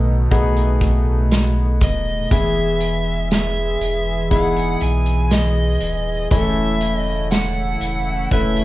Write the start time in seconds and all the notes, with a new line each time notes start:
Already playing: B1 B2 A3 B3 D#4 F#4 A4
0.31 B1 B3 D#4 F#4 G#4, kick, closed hi-hat
0.57 closed hi-hat
0.81 kick, closed hi-hat
1.32 snare, closed hi-hat
1.81 D#1 D#5, kick, closed hi-hat
2.31 E1 E3 G#3 B3 E4 G#4 E5, kick, closed hi-hat
2.81 closed hi-hat
3.31 E5, snare, closed hi-hat
3.81 E1, closed hi-hat
4.31 B3 D#4 E4 G#4 F#5, kick, closed hi-hat
4.56 closed hi-hat
4.81 B1 G#5, closed hi-hat
5.06 closed hi-hat
5.31 D#5, snare, closed hi-hat
5.81 D#1, closed hi-hat
6.31 E1 C#3 E3 A3 C#4 E4 G#4 E5, kick, closed hi-hat
6.38 A4
6.81 closed hi-hat
6.96 D#5
7.31 F#5, snare, closed hi-hat
7.81 E1, closed hi-hat
8.31 E1 A3 C#4 E4 B4 E5, kick, closed hi-hat
8.57 closed hi-hat